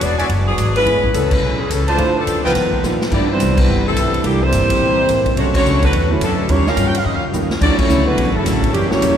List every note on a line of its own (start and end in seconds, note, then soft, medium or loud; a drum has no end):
0.01 0.29 E1 medium
0.01 0.20 E3 medium
0.01 0.20 G#3 medium
0.01 0.18 B3 medium
0.01 0.21 D4 medium
0.01 0.21 F#4 medium
0.01 0.18 F#4 medium
0.01 0.19 G#4 medium
0.01 0.18 D5 medium
0.01 kick soft
0.01 hi-hat pedal medium
0.01 ride medium
0.19 0.29 B3 medium
0.19 0.26 F#4 medium
0.19 0.29 F#4 medium
0.19 0.29 G#4 medium
0.19 0.26 D5 medium
0.19 0.29 D5 medium
0.19 0.26 E5 medium
0.19 0.26 G#5 medium
0.19 ride medium
0.29 0.57 F#1 medium
0.29 0.48 E3 soft
0.29 0.49 G#3 medium
0.29 0.49 D4 medium
0.29 0.49 F#4 medium
0.29 kick soft
0.29 ride medium
0.48 0.74 F#3 medium
0.48 0.74 B3 medium
0.48 0.74 D4 medium
0.48 0.74 G#4 medium
0.58 0.85 G#1 medium
0.58 0.77 E3 medium
0.58 0.77 G#3 medium
0.58 0.77 D4 medium
0.58 0.77 F#4 medium
0.58 kick soft
0.58 hi-hat pedal medium
0.58 ride medium
0.76 1.10 G#3 medium
0.76 1.10 C#4 medium
0.76 1.10 E4 medium
0.76 1.10 B4 loud
0.76 ride soft
0.85 1.13 A1 medium
0.85 1.01 G#3 soft
0.85 1.02 A3 soft
0.85 1.05 A3 soft
0.85 1.02 B3 soft
0.85 1.02 C#4 soft
0.85 1.05 C#4 soft
0.85 1.02 E4 soft
0.85 1.05 G#4 soft
0.85 kick soft
0.85 ride medium
1.03 kick medium
1.13 1.41 C#2 medium
1.13 1.33 E3 medium
1.13 1.32 A3 medium
1.13 1.33 B3 medium
1.13 1.32 C#4 medium
1.13 1.16 G#4 medium
1.13 1.33 G#4 medium
1.13 1.33 A4 medium
1.13 1.33 B4 medium
1.13 kick soft
1.13 hi-hat pedal medium
1.13 ride medium
1.31 1.60 G#3 medium
1.31 1.59 C#4 medium
1.31 1.60 E4 medium
1.31 1.60 B4 medium
1.31 kick medium
1.31 crash medium
1.41 1.69 B1 medium
1.41 1.61 A3 medium
1.41 1.61 C#4 medium
1.41 1.62 G#4 medium
1.41 1.62 B4 medium
1.60 1.70 E3 medium
1.60 1.70 B3 medium
1.60 1.70 C#4 medium
1.60 1.71 G#4 medium
1.70 1.98 C#2 medium
1.70 1.88 E3 medium
1.70 1.89 A3 medium
1.70 1.88 B3 medium
1.70 1.88 C#4 medium
1.70 1.90 C#4 medium
1.70 1.90 G#4 medium
1.70 1.88 A4 medium
1.70 1.90 B4 medium
1.70 kick soft
1.70 hi-hat pedal medium
1.70 ride medium
1.88 2.15 A3 medium
1.88 2.15 D4 medium
1.88 2.25 F4 medium
1.88 2.15 F4 medium
1.88 2.25 C5 medium
1.88 2.15 C5 loud
1.88 2.25 D5 medium
1.88 2.25 A5 medium
1.88 ride soft
1.98 2.26 D2 loud
1.98 2.18 D3 soft
1.98 2.14 F3 medium
1.98 2.14 A3 soft
1.98 2.18 A3 soft
1.98 2.14 C4 soft
1.98 2.18 C4 soft
1.98 2.14 D4 medium
1.98 2.14 E4 medium
1.98 2.18 F4 soft
1.98 kick soft
1.98 ride medium
2.17 2.45 F3 medium
2.17 2.45 C4 medium
2.17 2.45 D4 medium
2.17 2.45 A4 loud
2.26 2.35 F2 medium
2.26 2.45 D3 medium
2.26 2.45 A3 medium
2.26 2.46 C4 medium
2.26 2.46 F4 medium
2.26 kick soft
2.26 hi-hat pedal medium
2.26 ride medium
2.35 2.45 D2 medium
2.44 2.54 C2 medium
2.44 2.97 D#3 medium
2.44 2.97 F3 medium
2.44 2.98 F3 medium
2.44 2.97 B3 medium
2.44 2.98 D#4 medium
2.44 2.52 F4 medium
2.44 2.97 A#4 medium
2.44 2.52 B4 medium
2.44 2.98 B4 medium
2.44 2.52 D#5 medium
2.44 2.52 G5 loud
2.55 2.73 G2 soft
2.55 2.82 G2 medium
2.55 2.74 F3 soft
2.55 2.74 B3 medium
2.55 2.74 D#4 medium
2.55 kick soft
2.55 snare soft
2.55 ride medium
2.73 kick soft
2.82 3.02 G2 medium
2.82 3.10 A#2 medium
2.82 3.02 F3 medium
2.82 2.99 G3 medium
2.82 2.99 A#3 soft
2.82 2.99 B3 soft
2.82 3.02 B3 medium
2.82 2.99 D#4 soft
2.82 3.02 D#4 medium
2.82 2.99 F4 medium
2.82 snare soft
2.82 hi-hat pedal medium
3.01 snare medium
3.10 3.39 G2 medium
3.10 3.30 C3 soft
3.10 3.53 G3 soft
3.10 3.30 G3 soft
3.10 3.53 B3 soft
3.10 3.31 B3 soft
3.10 3.53 C4 soft
3.10 3.53 D4 soft
3.10 3.29 D4 medium
3.10 3.54 E4 medium
3.10 3.31 E4 soft
3.10 3.29 E4 medium
3.10 3.29 D5 medium
3.10 kick medium
3.10 crash medium
3.15 3.29 B3 medium
3.15 3.29 G4 medium
3.31 3.56 E3 medium
3.31 3.56 G3 medium
3.31 3.57 G3 medium
3.31 3.57 B3 medium
3.31 3.56 C4 medium
3.31 3.57 E4 medium
3.31 3.57 C5 medium
3.39 3.67 C2 medium
3.39 3.58 C3 medium
3.39 3.58 G3 medium
3.39 3.58 B3 medium
3.39 3.58 E4 medium
3.39 kick soft
3.39 hi-hat pedal medium
3.39 ride medium
3.57 3.85 E3 medium
3.57 3.86 G3 medium
3.57 3.86 B3 medium
3.57 3.87 C4 medium
3.57 3.87 E4 medium
3.57 3.87 B4 medium
3.57 kick medium
3.57 crash medium
3.67 3.95 G1 medium
3.67 3.86 C3 soft
3.67 3.86 G3 soft
3.67 3.87 B3 medium
3.67 3.87 E4 medium
3.85 4.22 C3 medium
3.85 4.22 E3 medium
3.85 4.23 G3 medium
3.85 4.21 A3 medium
3.85 4.23 C4 medium
3.85 4.23 E4 medium
3.85 4.23 A4 loud
3.96 4.23 B1 medium
3.96 4.14 C3 soft
3.96 4.14 G3 medium
3.96 4.15 B3 medium
3.96 4.15 E4 medium
3.96 kick soft
3.96 hi-hat pedal medium
3.96 ride medium
4.14 ride soft
4.23 4.51 C2 medium
4.23 4.40 A#2 medium
4.23 4.42 C3 soft
4.23 4.41 E3 medium
4.23 4.42 E3 medium
4.23 4.39 G3 soft
4.23 4.40 G3 medium
4.23 4.39 A3 soft
4.23 4.42 A#3 soft
4.23 4.40 A#3 soft
4.23 4.41 A#3 medium
4.23 4.40 D4 soft
4.23 4.41 D4 medium
4.23 4.40 E4 soft
4.23 4.42 E4 soft
4.23 4.41 G4 medium
4.23 4.43 A4 soft
4.23 kick soft
4.23 ride medium
4.41 5.26 E3 medium
4.41 5.26 G3 medium
4.41 5.27 A#3 medium
4.41 5.26 C4 medium
4.41 5.27 E4 medium
4.41 5.27 G4 medium
4.41 5.27 C5 loud
4.51 4.68 G1 medium
4.51 4.70 C3 medium
4.51 4.70 A#3 medium
4.51 4.70 E4 medium
4.51 4.70 A4 medium
4.51 kick soft
4.51 snare soft
4.51 hi-hat pedal medium
4.51 ride medium
4.69 muted upright bass stroke soft
4.69 kick medium
4.69 ride medium
4.79 5.07 A#1 medium
4.79 4.98 C3 medium
4.79 4.98 A#3 medium
4.79 4.99 E4 medium
4.79 4.99 A4 medium
4.79 kick soft
5.08 5.36 A1 medium
5.08 5.27 C3 medium
5.08 5.27 A#3 medium
5.08 5.27 E4 medium
5.08 5.27 A4 medium
5.08 kick soft
5.08 hi-hat pedal soft
5.08 ride medium
5.26 kick medium
5.26 ride soft
5.36 5.63 B1 medium
5.36 5.55 B2 soft
5.36 5.53 F#3 medium
5.36 5.52 A3 medium
5.36 5.55 A3 soft
5.36 5.54 A3 medium
5.36 5.53 C#4 medium
5.36 5.55 D4 soft
5.36 5.54 D4 medium
5.36 5.56 E4 soft
5.36 5.54 F#4 medium
5.36 5.53 C#5 medium
5.36 kick soft
5.36 ride medium
5.54 5.80 F#3 medium
5.54 5.80 A3 medium
5.54 5.82 A3 medium
5.54 5.80 C#4 medium
5.54 5.82 D4 medium
5.54 5.82 F#4 loud
5.54 5.81 C#5 loud
5.54 kick medium
5.54 crash medium
5.64 5.91 C#2 loud
5.64 5.83 B2 medium
5.64 5.83 A3 medium
5.64 5.83 D4 medium
5.64 5.84 E4 medium
5.64 hi-hat pedal soft
5.82 6.08 D3 medium
5.82 6.08 F#3 medium
5.82 6.09 A3 medium
5.82 6.08 B3 medium
5.82 6.10 D4 medium
5.82 6.10 F#4 medium
5.82 6.10 B4 medium
5.82 kick medium
5.82 ride soft
5.93 6.20 E2 medium
5.93 6.11 B2 soft
5.93 6.12 A3 medium
5.93 6.12 D4 medium
5.93 6.12 E4 medium
5.93 kick soft
5.93 ride medium
6.10 6.20 D3 medium
6.10 6.20 F#3 medium
6.10 6.20 A3 medium
6.10 6.20 C#4 medium
6.10 6.20 E4 medium
6.20 6.48 F#2 medium
6.20 6.40 B2 medium
6.20 6.47 D3 medium
6.20 6.47 F#3 medium
6.20 6.49 F#3 medium
6.20 6.47 A3 medium
6.20 6.40 A3 medium
6.20 6.48 C#4 medium
6.20 6.40 D4 medium
6.20 6.48 D4 medium
6.20 6.40 E4 soft
6.20 6.49 A4 medium
6.20 kick soft
6.20 hi-hat pedal soft
6.20 ride medium
6.49 6.76 D#2 medium
6.49 6.64 D#3 medium
6.49 6.67 D#3 soft
6.49 6.65 G3 soft
6.49 6.68 G3 soft
6.49 6.67 G3 medium
6.49 6.65 A#3 soft
6.49 6.66 A#3 medium
6.49 6.67 A#3 medium
6.49 6.65 C#4 soft
6.49 6.68 C#4 soft
6.49 6.66 C#4 medium
6.49 6.65 F4 medium
6.49 6.68 F4 soft
6.49 6.67 F4 medium
6.49 6.67 G4 medium
6.49 6.67 C#5 loud
6.49 kick soft
6.49 ride medium
6.66 6.86 A#3 medium
6.66 6.86 C#4 medium
6.66 6.87 C#4 medium
6.66 6.86 F4 medium
6.66 6.87 G4 medium
6.66 6.86 A#4 medium
6.66 6.87 F5 loud
6.66 snare soft
6.77 7.04 G2 medium
6.77 6.95 D#3 medium
6.77 6.96 G3 medium
6.77 6.96 C#4 medium
6.77 6.96 F4 medium
6.77 kick soft
6.77 hi-hat pedal medium
6.77 ride medium
6.88 6.97 G5 medium
6.95 7.04 F5 medium
6.95 ride medium
7.04 7.14 F2 medium
7.04 7.23 D#3 soft
7.04 7.24 G3 medium
7.04 7.24 C#4 soft
7.04 7.24 F4 soft
7.04 7.13 D#5 medium
7.04 kick soft
7.14 7.23 D#2 medium
7.14 7.24 F5 medium
7.23 7.32 C#2 medium
7.33 7.49 D#2 medium
7.33 7.49 D#3 medium
7.33 7.52 D#3 medium
7.33 7.49 G3 soft
7.33 7.52 G3 medium
7.33 7.49 A#3 soft
7.33 7.49 C#4 medium
7.33 7.52 C#4 medium
7.33 7.49 F4 medium
7.33 7.52 F4 medium
7.33 hi-hat pedal medium
7.49 muted upright bass stroke soft
7.49 snare medium
7.60 7.77 D2 medium
7.60 7.79 D3 soft
7.60 7.76 F#3 medium
7.60 7.80 F#3 soft
7.60 7.77 A3 medium
7.60 7.78 A3 medium
7.60 7.80 C#4 soft
7.60 7.77 D4 medium
7.60 7.78 E4 medium
7.60 7.80 E4 soft
7.60 7.78 F#4 medium
7.60 7.78 D5 loud
7.60 kick medium
7.60 crash medium
7.77 8.03 F#3 medium
7.77 8.06 A3 medium
7.77 8.06 A3 loud
7.77 8.06 C#4 medium
7.77 8.06 E4 loud
7.77 8.06 F#4 medium
7.77 8.07 C#5 loud
7.77 muted upright bass stroke soft
7.77 kick medium
7.77 crash medium
7.88 8.16 C#2 medium
7.88 8.31 D3 medium
7.88 8.08 D3 medium
7.88 8.31 F#3 medium
7.88 8.08 F#3 medium
7.88 8.31 A3 medium
7.88 8.31 C#4 medium
7.88 8.09 C#4 medium
7.88 8.31 E4 medium
7.88 8.09 E4 medium
7.88 hi-hat pedal medium
8.04 8.31 C#3 medium
8.04 8.31 F#3 medium
8.04 8.35 A3 medium
8.04 8.34 B3 medium
8.04 8.35 E4 medium
8.04 8.35 F#4 medium
8.04 8.35 B4 medium
8.16 8.25 B1 medium
8.16 8.35 D3 soft
8.16 8.36 F#3 soft
8.16 8.36 C#4 medium
8.16 8.36 E4 medium
8.16 kick soft
8.16 ride medium
8.25 8.35 A1 medium
8.32 8.44 F#1 medium
8.32 8.71 C#3 loud
8.32 8.72 F#3 medium
8.32 8.72 A3 medium
8.36 8.74 F#3 medium
8.36 8.72 C#4 medium
8.36 8.75 E4 medium
8.36 8.74 A4 medium
8.45 8.72 A1 medium
8.45 8.63 D3 medium
8.45 8.64 F#3 medium
8.45 8.64 C#4 medium
8.45 8.64 E4 medium
8.45 kick soft
8.45 snare soft
8.45 hi-hat pedal medium
8.45 ride medium
8.63 kick medium
8.63 ride soft
8.71 8.89 F#1 medium
8.71 8.89 C#3 medium
8.71 8.87 E3 medium
8.71 8.89 E3 medium
8.71 8.91 F#3 soft
8.71 8.89 G3 medium
8.71 8.92 A#3 soft
8.71 8.90 A#3 medium
8.71 8.89 C#4 medium
8.71 8.92 E4 soft
8.71 8.89 G4 medium
8.71 8.92 G4 soft
8.71 kick soft
8.71 ride medium
8.88 9.17 E3 loud
8.88 9.00 E3 medium
8.88 9.00 G3 medium
8.88 9.17 A#3 loud
8.88 9.00 A#3 medium
8.88 9.17 A#3 loud
8.88 9.17 C#4 medium
8.88 9.00 C#4 medium
8.88 9.17 E4 loud
8.88 9.01 F#4 medium
8.88 9.17 G4 loud
8.88 9.17 C#5 loud
8.88 muted upright bass stroke soft
8.88 snare medium
9.01 9.17 E1 medium
9.01 9.17 F#3 medium
9.01 9.17 A#3 medium
9.01 9.17 E4 medium
9.01 9.17 G4 medium
9.01 kick soft
9.01 hi-hat pedal medium
9.01 ride medium